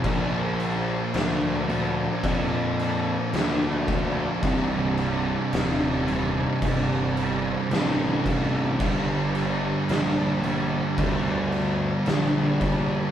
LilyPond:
<<
  \new Staff \with { instrumentName = "Distorted electric guitar" } { \clef bass \time 4/4 \key bes \major \tempo 4 = 55 <bes, f bes>4. <bes, f bes>4. <bes, f bes>4 | <c, g, c>4. <c, g, c>4. <c, g, c>4 | <g, d g>4. <g, d g>4. <g, d g>4 | }
  \new Staff \with { instrumentName = "Distorted electric guitar" } { \clef bass \time 4/4 \key bes \major <bes, f bes>4. <bes, f bes>4. <bes, f bes>4 | <c, g, c>4. <c, g, c>4. <c, g, c>4 | <g, d g>4. <g, d g>4. <g, d g>4 | }
  \new Staff \with { instrumentName = "Picked electric bass" } { \clef bass \time 4/4 \key bes \major bes,,4 d,4 f,4 d,4 | c,,4 ees,,4 g,,4 a,,4 | g,,4 bes,,4 d,4 bes,,4 | }
  \new DrumStaff \with { instrumentName = "Drums" } \drummode { \time 4/4 <cymc bd>8 cymc8 <cymc sn>8 cymc8 <cymc bd>8 cymc8 <cymc sn>8 <cymc bd>8 | <cymc bd>8 cymc8 <cymc sn>8 cymc8 <cymc bd>8 cymc8 <cymc sn>8 <cymc bd>8 | <cymc bd>8 cymc8 <cymc sn>8 cymc8 <cymc bd>8 cymc8 <cymc sn>8 <cymc bd>8 | }
>>